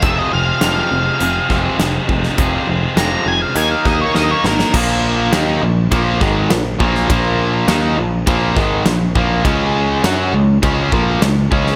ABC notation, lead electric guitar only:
X:1
M:4/4
L:1/16
Q:1/4=102
K:Bbm
V:1 name="Lead electric guitar"
=e _e f2 f8 z4 | z4 b2 a f a f e d e d B2 | z16 | z16 |
z16 |]